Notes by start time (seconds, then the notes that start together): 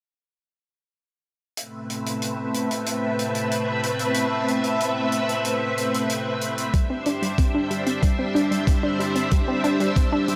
1.57 A3 C4 B4 E5, closed hi-hat
1.90 closed hi-hat
2.06 closed hi-hat
2.22 closed hi-hat
2.54 closed hi-hat
2.71 closed hi-hat
2.86 closed hi-hat
3.19 closed hi-hat
3.35 closed hi-hat
3.51 closed hi-hat
3.83 closed hi-hat
3.99 closed hi-hat
4.14 closed hi-hat
4.48 closed hi-hat
4.64 closed hi-hat
4.80 closed hi-hat
5.12 closed hi-hat
5.29 closed hi-hat
5.45 closed hi-hat
5.78 closed hi-hat
5.94 closed hi-hat
6.10 closed hi-hat
6.41 closed hi-hat
6.58 closed hi-hat
6.74 G3 D4 C5 E5, kick, closed hi-hat
6.90 C4
7.06 D4, closed hi-hat
7.22 G3, closed hi-hat
7.38 C4, kick, closed hi-hat
7.54 D4
7.71 G3, closed hi-hat
7.86 C4, closed hi-hat
8.03 G3, kick, closed hi-hat
8.19 C4
8.35 D4, closed hi-hat
8.51 G3, closed hi-hat
8.67 C4, kick, closed hi-hat
8.83 D4
8.99 G3, closed hi-hat
9.15 C4, closed hi-hat
9.31 G3, kick, closed hi-hat
9.48 C4
9.64 D4, closed hi-hat
9.80 G3, closed hi-hat
9.96 C4, kick, closed hi-hat
10.12 D4
10.28 G3, closed hi-hat